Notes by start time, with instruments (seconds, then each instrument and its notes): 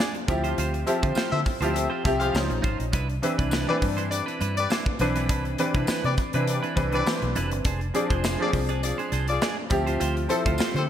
Already playing: grand piano F3 C4 D4 G#4
0.00 clean electric guitar D4 G#4 D5, snare
0.15 muted clean electric guitar stroke, closed hi-hat
0.28 fingered electric bass D2, grand piano F3 C4 E4 G4, muted clean electric guitar stroke, kick, closed hi-hat, tambourine
0.44 clean electric guitar F4 G4 C5, closed hi-hat
0.57 fingered electric bass D2, clean electric guitar F4 G4 C5, closed hi-hat, tambourine
0.74 muted clean electric guitar stroke, closed hi-hat
0.86 grand piano F3 C4 E4 G4, horn section A4 C5 E5, muted clean electric guitar stroke, closed hi-hat, tambourine
1.03 fingered electric bass D3, clean electric guitar F4 G4 C5, kick, closed hi-hat
1.15 clean electric guitar F4 G4 C5, muted fingered electric bass stroke, snare, tambourine
1.32 fingered electric bass D3, horn section A4 C5 E5, muted clean electric guitar stroke
1.45 muted clean electric guitar stroke, kick, open hi-hat, tambourine
1.61 fingered electric bass D2, grand piano F3 C4 E4 G4, clean electric guitar F4 G4 C5, closed hi-hat
1.74 horn section A4 C5 E5, muted clean electric guitar stroke, closed hi-hat, tambourine
1.90 clean electric guitar F4 G4 C5
2.04 fingered electric bass C2, grand piano F3 C4 E4 G4, muted clean electric guitar stroke, kick, snare, closed hi-hat, tambourine
2.19 grand piano F3 C4 E4 G4, horn section G#4 C5 F5, muted clean electric guitar stroke, closed hi-hat
2.33 fingered electric bass C#2, grand piano F3 C#4 D#4 C5, muted clean electric guitar stroke, snare, tambourine
2.50 fingered electric bass A#1, muted clean electric guitar stroke, closed hi-hat
2.62 fingered electric bass G#1, clean electric guitar D#4 F4 C5, kick, closed hi-hat, tambourine
2.79 fingered electric bass A#1, muted clean electric guitar stroke, closed hi-hat
2.92 fingered electric bass C2, clean electric guitar D4 E4 B4, kick, closed hi-hat, tambourine
3.09 muted clean electric guitar stroke, closed hi-hat
3.22 grand piano E3 C4 D4 B4, horn section G4 B4 E5, muted clean electric guitar stroke, closed hi-hat, tambourine
3.38 fingered electric bass C2, clean electric guitar D4 E4 B4, kick, closed hi-hat
3.51 clean electric guitar D4 E4 B4, snare, tambourine
3.68 grand piano E3 C4 D4 B4, horn section G4 B4 D5, muted clean electric guitar stroke
3.81 fingered electric bass G2, muted clean electric guitar stroke, kick, open hi-hat, tambourine
3.97 clean electric guitar D4 E4 C5, closed hi-hat
4.11 horn section G4 B4 D5, muted clean electric guitar stroke, closed hi-hat, tambourine
4.26 clean electric guitar D4 E4 B4, closed hi-hat
4.40 fingered electric bass G2, clean electric guitar D4 E4 B4, closed hi-hat, tambourine
4.57 horn section G4 B4 D5, muted clean electric guitar stroke, closed hi-hat
4.70 clean electric guitar D4 E4 C5, snare, tambourine
4.86 muted clean electric guitar stroke, kick
4.99 fingered electric bass B1, grand piano E3 C4 D4 B4, muted clean electric guitar stroke, closed hi-hat, tambourine
5.16 clean electric guitar D4 E4 B4, closed hi-hat
5.29 fingered electric bass C2, clean electric guitar D4 E4 B4, kick, closed hi-hat
5.45 muted clean electric guitar stroke, closed hi-hat
5.58 grand piano E3 C4 D4 B4, horn section G4 B4 D5, muted clean electric guitar stroke, closed hi-hat, tambourine
5.74 fingered electric bass C3, clean electric guitar D4 E4 B4, kick, closed hi-hat
5.87 clean electric guitar D4 E4 B4, muted fingered electric bass stroke, snare, tambourine
6.04 fingered electric bass C3, horn section G4 B4 D5, muted clean electric guitar stroke, closed hi-hat
6.17 muted clean electric guitar stroke, kick, closed hi-hat, tambourine
6.33 fingered electric bass C3, grand piano E3 C4 D4 B4, clean electric guitar D4 E4 B4, closed hi-hat
6.47 horn section G4 B4 D5, muted clean electric guitar stroke, closed hi-hat, tambourine
6.63 clean electric guitar D4 E4 B4, closed hi-hat
6.76 fingered electric bass C2, grand piano E3 C4 D4 B4, muted clean electric guitar stroke, kick, closed hi-hat, tambourine
6.92 grand piano E3 C4 D4 B4, horn section G4 B4 D5, muted clean electric guitar stroke, closed hi-hat
7.05 grand piano E3 C4 D4 C5, muted clean electric guitar stroke, snare, tambourine
7.22 fingered electric bass B1, muted clean electric guitar stroke, closed hi-hat
7.35 fingered electric bass F1, clean electric guitar D4 E4 B4, closed hi-hat, tambourine
7.51 fingered electric bass G1, muted clean electric guitar stroke, closed hi-hat
7.65 fingered electric bass F1, clean electric guitar D4 G#4 C5, kick, closed hi-hat
7.81 muted clean electric guitar stroke, closed hi-hat
7.94 grand piano F3 C4 D4 G#4, horn section F4 G#4 D5, muted clean electric guitar stroke, closed hi-hat, tambourine
8.10 fingered electric bass F1, clean electric guitar D4 G#4 C5, kick, closed hi-hat
8.24 clean electric guitar D4 G#4 C5, snare, tambourine
8.39 grand piano F3 C4 D4 G#4, horn section F4 G#4 D5, muted clean electric guitar stroke
8.53 fingered electric bass C2, muted clean electric guitar stroke, kick, open hi-hat, tambourine
8.69 clean electric guitar D4 G#4 D5, closed hi-hat
8.83 horn section F4 G#4 D5, muted clean electric guitar stroke, closed hi-hat, tambourine
8.98 clean electric guitar D4 G#4 C5, closed hi-hat
9.12 fingered electric bass C2, clean electric guitar D4 G#4 C5, closed hi-hat, tambourine
9.28 horn section F4 G#4 D5, muted clean electric guitar stroke, closed hi-hat
9.42 clean electric guitar D4 G#4 D5, snare, tambourine
9.58 muted clean electric guitar stroke
9.70 fingered electric bass D2, grand piano F3 C4 E4 G4, muted clean electric guitar stroke, kick, closed hi-hat, tambourine
9.87 clean electric guitar F4 G4 C5, closed hi-hat
10.00 fingered electric bass D2, clean electric guitar F4 G4 C5, closed hi-hat, tambourine
10.16 muted clean electric guitar stroke, closed hi-hat
10.28 grand piano F3 C4 E4 A4, horn section G4 A4 C5, muted clean electric guitar stroke, closed hi-hat, tambourine
10.46 fingered electric bass D2, clean electric guitar F4 G4 C5, kick, closed hi-hat
10.58 clean electric guitar F4 G4 C5, muted fingered electric bass stroke, snare, tambourine
10.74 fingered electric bass D3, horn section G4 A4 C5, muted clean electric guitar stroke, closed hi-hat